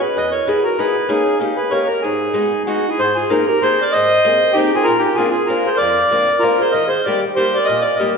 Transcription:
0.01 G#4 B4
0.17 E2 B4 D#5
0.31 A#4 C#5
0.47 B3 D#4 E4 G#4 B4
0.63 F#4 A#4
0.78 B3 D#4 E4 G#4 B4
1.09 A#3 C#4 D#4 G#4
1.39 A#3 C#4 D#4 G4
1.56 G#4 B4
1.71 A#3 C#4 D#4 G4 A#4 C#5
1.86 G4 A#4
2.02 G#2 D#4 G#4
2.34 G#3 B3 D#4 F#4
2.67 G#3 B3 D#4 F#4
2.89 E4 G#4
2.99 G#2 G#4 C5
3.15 F4 G#4
3.30 A#3 C4 D#4 G#4 A#4
3.47 G4 A#4
3.62 A#3 C4 D#4 G#4 C5
3.82 A#4 D5
3.92 G#2 C5 D#5
4.25 A#3 C4 D#4 G#4
4.53 A#3 C4 D#4 G4
4.57 D#4 G#4
4.75 F4 G#4
4.84 F4 A#4
4.88 A#2
4.99 D#4 G4
5.13 F4 G#4
5.18 A#3 C4 D4 F4
5.30 F4 G#4
5.45 A#3 F4 A#4
5.50 C4 D4 F4
5.66 G#4 C5
5.77 A#4 D5
5.81 F2
6.11 A#3 C4 D4 F4
6.39 A#3 F4 A#4
6.43 C4 D4 F4
6.60 G#4 C5
6.71 D#3 A#4 D#5
6.87 G#4 C5
7.03 G3 A#3 A#4 D5
7.07 D#4 G4
7.35 G3 A#3 D#4 G4 C5
7.55 A#4 D5
7.65 A#4 D#5
7.69 A#2
7.81 A#4 D5
7.96 G3 A#3 A#4 D#5
8.01 D#4 G4

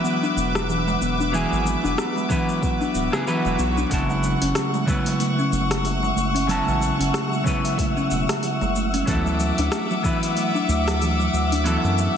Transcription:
Already playing: F#3 B3 E4 B4 E5 F#5 D6
0.04 B3, shaker
0.23 D4, shaker
0.37 E1 B3, shaker
0.55 G#3, cross-stick, shaker
0.69 E3, shaker
0.88 G#3, shaker
1.01 E1 B3, shaker
1.20 D4, shaker
1.32 E3 F#3 B3 E4 G#4, shaker
1.52 G#1 G#3, shaker
1.66 G#3, shaker
1.84 E1 D4, shaker
1.98 B3, cross-stick, shaker
2.16 G#3, shaker
2.29 E3 F#3 B3 E4 B4, kick, shaker
2.48 G#3, shaker
2.62 B3, kick, swell, shaker
2.81 D4, shaker
2.94 D1 B3, shaker
3.12 C#3 F#3 G#3 B3 E4 G#4, cross-stick, shaker
3.27 E3 F#3 B3 E4 B4, shaker
3.45 E1 G#3, shaker
3.59 B1 B3, shaker
3.77 D4, shaker
3.90 F#1 C#3 F#3 B3 E4 E5 F#5 C#6, kick, open hi-hat, shaker
3.94 A5
4.09 G#3, shaker
4.23 G#3, shaker
4.42 F#1 C#4, open hi-hat, shaker
4.55 A3, cross-stick, open hi-hat, shaker
4.74 G#3, shaker
4.86 C#3 F#3 B3 E4 B4, kick, shaker
5.06 G#3, open hi-hat, shaker
5.20 A3, open hi-hat, shaker
5.39 C#4, shaker
5.52 F#1 A3, shaker
5.71 G#3, cross-stick, open hi-hat, shaker
5.84 F#3, open hi-hat, shaker
6.03 G#3, shaker
6.16 F#1 A3, shaker
6.35 C#4, open hi-hat, shaker
6.47 C#3 F#3 B3 E4 A5, open hi-hat, shaker
6.67 A1 G#3, shaker
6.80 G#3, shaker
6.99 F#1 C#4, open hi-hat, shaker
7.13 A3, cross-stick, open hi-hat, shaker
7.32 G#3, shaker
7.44 C#3 F#3 B3 E4 B4, kick, shaker
7.64 G#3, open hi-hat, shaker
7.78 A3, kick, open hi-hat, shaker
7.97 C#4, shaker
8.11 E1 A3, shaker
8.29 G#3, cross-stick, open hi-hat, shaker
8.43 F#3, open hi-hat, shaker
8.61 F#1 G#3, shaker
8.75 A3, shaker
8.94 C#4, open hi-hat, shaker
9.06 D2 E3 F#3 B3 E4 A4 E5 F#5 D6, kick, open hi-hat, shaker
9.26 F#3, shaker
9.40 F#3, shaker
9.58 D2 D4, open hi-hat, shaker
9.72 A3, cross-stick, open hi-hat, shaker
9.91 F#3, shaker
10.03 E3 F#3 B3 E4 B4, kick, shaker
10.23 F#3, open hi-hat, shaker
10.37 A3, open hi-hat, shaker
10.55 D4, shaker
10.68 D2 A3, shaker
10.87 F#3, cross-stick, open hi-hat, shaker
11.01 E3, open hi-hat, shaker
11.20 F#3, shaker
11.33 D2 A3, shaker
11.52 D4, open hi-hat, shaker
11.64 E3 F#3 B3 E4 A4, open hi-hat, shaker
11.84 F#2 F#3, shaker
11.98 F#3, shaker

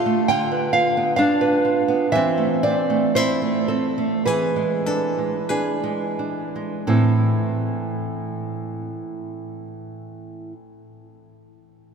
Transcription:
Already playing: F4 G4 F5
0.06 A3
0.28 D3 F4 G5
0.51 B4
0.73 F4 F5
0.97 B3
1.16 D4 F5
1.41 B4
1.65 F4
1.88 B3
2.12 E3 C4 E5
2.38 A3
2.63 C4 D5
2.90 A3
3.15 C4 E4 C5
3.42 A3
3.68 C4 A4
3.98 A3
4.25 E3 G#4 B4
4.56 G#3
4.86 D4 A4
5.18 G#3
5.49 D4 G#4 B4
5.84 G#3
6.19 D4
6.56 G#3
6.87 A2 E3 C4 E4 A4

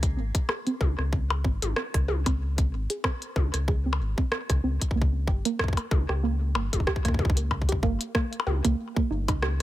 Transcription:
Already playing: C#2
0.03 kick, closed hi-hat
0.17 G#1 C4
0.35 kick, closed hi-hat
0.49 G#4, cross-stick, percussion blips
0.67 C4, closed hi-hat
0.81 C#2, kick, high tom
0.99 C#2 C4, cross-stick
1.13 kick
1.30 G#4, percussion blips
1.44 G#1 C4, kick
1.62 G#1, closed hi-hat, high tom
1.76 C4, cross-stick
1.94 C#2, kick, cross-stick, closed hi-hat
2.08 G#4, high tom
2.26 C4, kick, closed hi-hat, percussion blips
2.58 C4, kick, closed hi-hat
2.72 G#1
2.90 G#4, closed hi-hat
3.04 C4, kick, cross-stick, percussion blips
3.22 closed hi-hat
3.36 C#2 C4, kick, high tom
3.54 C#2, cross-stick, closed hi-hat
3.68 G#4, kick
3.86 C4
3.93 percussion blips
4.00 G#1
4.18 C4, kick
4.32 cross-stick
4.50 C#2 G#4, kick, cross-stick, closed hi-hat
4.64 C#2 C4
4.82 kick, closed hi-hat
4.91 kick
4.96 C#2 A#3
5.02 kick
5.27 G1 G4, kick
5.45 A#3, closed hi-hat
5.59 kick, cross-stick
5.64 kick
5.68 kick
5.73 kick
5.77 A#3, closed hi-hat, percussion blips
5.91 C#2, kick, high tom
6.09 C#2 G4, cross-stick
6.23 A#3
6.55 G1 A#3, percussion blips
6.73 G1, kick, closed hi-hat, high tom
6.80 kick
6.87 G4, kick, cross-stick
6.96 kick
7.05 C#2 A#3, kick, cross-stick, closed hi-hat
7.08 kick
7.14 kick
7.19 kick, high tom
7.25 kick
7.30 kick
7.37 A#3, closed hi-hat
7.51 kick, percussion blips
7.62 kick
7.69 G4, kick, closed hi-hat
7.83 G1 A#3, kick
8.01 closed hi-hat
8.15 A#3, kick, cross-stick
8.33 closed hi-hat
8.40 percussion blips
8.47 C#2 G4, high tom
8.65 C#2 A#3, kick, closed hi-hat
8.96 A#3, kick
9.10 G1 D#4
9.28 C#2 D#4, kick, closed hi-hat, percussion blips
9.42 G4, cross-stick

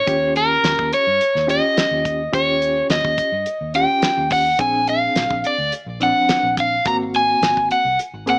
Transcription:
Already playing: C#5
0.06 D#2 C#4 F4 G4, kick, closed hi-hat
0.36 A#4, closed hi-hat
0.64 D#2, snare, closed hi-hat
0.79 D#2, kick
0.93 C#5, closed hi-hat
1.07 G2
1.21 closed hi-hat
1.35 D#2, snare
1.47 C#4 F4 G4 D#5, closed hi-hat
1.77 snare, closed hi-hat
1.91 D#2
2.05 kick, closed hi-hat
2.32 D#2 C#4 F4 G4 C#5, kick, closed hi-hat
2.62 closed hi-hat
2.90 D#2 D#5, snare, closed hi-hat
3.05 D#2, kick
3.18 kick, closed hi-hat
3.32 G2
3.46 closed hi-hat
3.61 D#2
3.74 C#4 F4 G4 G5, closed hi-hat
4.02 snare, closed hi-hat
4.17 D#2
4.30 F#5, kick, open hi-hat
4.59 A#1 C4 D4 G#4 G#5, kick, closed hi-hat
4.87 F5, closed hi-hat
5.16 A#1, snare, closed hi-hat
5.30 A#1, kick
5.44 D5, closed hi-hat
5.58 D2
5.72 closed hi-hat
5.86 A#1
6.00 F3 C4 D4 F#5, closed hi-hat
6.29 snare, closed hi-hat
6.43 A#1
6.57 F5, kick, closed hi-hat
6.85 G#1 A#3 C4 F#4 A#5, kick, closed hi-hat
7.14 G#5, closed hi-hat
7.42 G#1, snare, closed hi-hat
7.57 G#1, kick
7.71 F#5, closed hi-hat
7.85 C2
7.99 closed hi-hat
8.14 G#1
8.26 A#3 C4 G#4 F#5, closed hi-hat

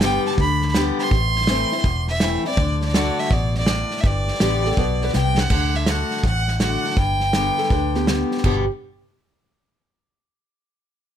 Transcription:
Already playing: G1 G2
0.01 D3 G3 B3 G4 G5, snare, hi-hat pedal
0.26 A5, snare
0.31 snare
0.37 D2 D3 B5, kick, snare
0.62 snare
0.68 snare
0.74 D3 G3 B3 G4, snare, hi-hat pedal
0.99 C6, snare
1.05 snare
1.11 A1 A2, kick, snare
1.36 snare
1.41 snare
1.47 E3 A3 C4 E4, snare, hi-hat pedal
1.71 C4 E4, snare
1.78 snare
1.83 E1 E2, kick, snare
2.08 E5, snare
2.14 snare
2.20 E3 A3 C4 E4, snare, hi-hat pedal
2.45 C4 E4 D5, snare
2.51 snare
2.56 D2 D3, kick, snare
2.81 D5, snare
2.88 snare
2.94 D3 A3 D4 F#4, snare, hi-hat pedal
3.19 E5, snare
3.25 snare
3.30 A1 B2 D5, kick, snare
3.54 D5, snare
3.60 snare
3.66 A2, snare, hi-hat pedal
3.91 snare
3.97 E5, snare
4.04 G1 G2 D5, kick, snare
4.27 snare
4.34 snare
4.40 A1 D3 G3 B3 G4, snare, hi-hat pedal
4.64 B3 G4 A4, snare
4.71 snare
4.77 B1 B2 B4, kick, snare
5.02 B4, snare
5.08 snare
5.14 C2 C3 G5, snare, hi-hat pedal
5.38 F#5, snare
5.50 D2 D3, kick, snare, crash
5.74 E5, snare
5.86 D3 A3 D4 F#4 F#5, snare, hi-hat pedal
6.11 snare
6.17 snare
6.23 A1 A2 F#5, kick, snare
6.48 snare
6.60 D3 A3 D4 F#4 F#5, snare, hi-hat pedal
6.84 snare
6.90 snare
6.96 G1 G2 G5, kick, snare
7.20 snare
7.33 D3 G3 B3 G4, snare, hi-hat pedal
7.58 A4, snare
7.63 snare
7.70 D2 D3 B4, kick, snare
7.95 B3 G4, snare
8.07 D3 G3 B3 G4, snare, hi-hat pedal
8.31 snare
8.37 snare
8.44 G1 G2 B2 D3 G3 B3 G4, kick, crash

